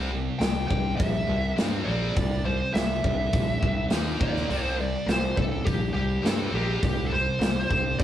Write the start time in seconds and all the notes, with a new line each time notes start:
Already playing: C2 G3 C4
0.11 C3 G3
0.39 C2 C3 G3 G5, snare, open hi-hat
0.68 C2 C3 G3 G5, kick
0.97 A#1 C3 G3 E5, kick, open hi-hat
1.27 C2 C3 G3
1.56 G2 C3 G3 C4, snare, open hi-hat
1.85 A#1 C3 G3 C4 D5
2.15 C2 C3 G3, kick, open hi-hat
2.44 C3 G3 C5
2.74 C2 C3 G3 E5, snare, open hi-hat
3.03 C2 C3 G3, kick
3.33 A#1 C3 G3, kick, open hi-hat
3.61 C2 C3 G3, kick
3.90 D#2 D#3 A#3 D#4, snare, open hi-hat
4.19 D#2 D#3 A#3 D#4 D5, kick
4.36 snare
4.49 C2 C3 G3 C4, open hi-hat
4.63 C5
4.78 C3 G3 D5
5.06 C2 C3 G3 C5, snare, open hi-hat
5.36 C2 C3 G3 A4, kick
5.64 A#1 C3 G3 G4, kick, open hi-hat
5.93 C2 C3 G3 G4
6.22 G2 C3 G3 C4 A4, open hi-hat
6.26 C3 G3 C4, snare
6.51 A#1 C3 G3 C4 G4
6.55 C3 C4
6.81 C2 C3 G3 G4, kick, open hi-hat
7.05 A4
7.10 C3 G3 C5
7.39 C2 C3 G3, snare, open hi-hat
7.69 C2 C3 G3 C5, kick
7.99 A#1 C3 G3 E5, kick, open hi-hat